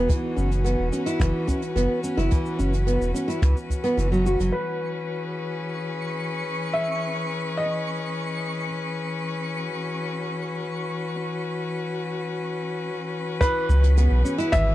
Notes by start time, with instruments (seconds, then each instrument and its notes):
Already playing: string quartet E3 D#4 F#4 G#4
0.09 nylon-string guitar E3, kick, closed hi-hat, shaker
0.35 sub bass F#1, string quartet C#4, nylon-string guitar C#4, shaker
0.52 closed hi-hat, shaker
0.65 nylon-string guitar B3, closed hi-hat, shaker
0.79 sub bass E1
0.92 nylon-string guitar C#4, closed hi-hat, shaker
0.96 string quartet B4
1.06 nylon-string guitar E4, closed hi-hat, shaker
1.19 sub bass F#1, nylon-string guitar E3, finger snap, kick, closed hi-hat, shaker
1.47 nylon-string guitar C#4, kick, closed hi-hat, shaker
1.62 closed hi-hat, shaker
1.76 sub bass F#1, nylon-string guitar B3, closed hi-hat, shaker
2.03 nylon-string guitar C#4, shaker
2.17 sub bass F#1, nylon-string guitar E4, closed hi-hat, shaker
2.31 nylon-string guitar E3, kick, closed hi-hat, shaker
2.46 shaker
2.59 sub bass F#1, nylon-string guitar C#4, closed hi-hat, shaker
2.73 closed hi-hat, shaker
2.87 nylon-string guitar B3, closed hi-hat
3.01 sub bass E1, shaker
3.14 nylon-string guitar C#4, closed hi-hat, shaker
3.28 nylon-string guitar E4, closed hi-hat, shaker
3.42 sub bass C#2, nylon-string guitar E3, finger snap, kick, closed hi-hat, shaker
3.57 shaker
3.70 kick, closed hi-hat, shaker
3.84 nylon-string guitar B3, closed hi-hat, shaker
3.97 sub bass F#1, nylon-string guitar E3, closed hi-hat, shaker
4.12 nylon-string guitar F#3, shaker
4.26 nylon-string guitar F#4, shaker
4.40 sub bass F#1, nylon-string guitar F#3, closed hi-hat, shaker
4.52 felt piano B4, synth texture C#6
5.18 string quartet G#4
6.73 felt piano E5
7.57 felt piano D#5
9.56 string quartet F#4
13.41 nylon-string guitar E3, felt piano B4, kick, closed hi-hat, shaker
13.69 sub bass C#2, nylon-string guitar C#4, shaker
13.83 closed hi-hat, shaker
13.97 nylon-string guitar B3, string quartet G#4, closed hi-hat, shaker
14.11 sub bass B1
14.25 nylon-string guitar C#4, shaker
14.38 nylon-string guitar E4, closed hi-hat, shaker
14.52 sub bass G#1, nylon-string guitar E3, felt piano E5, finger snap, kick, closed hi-hat, shaker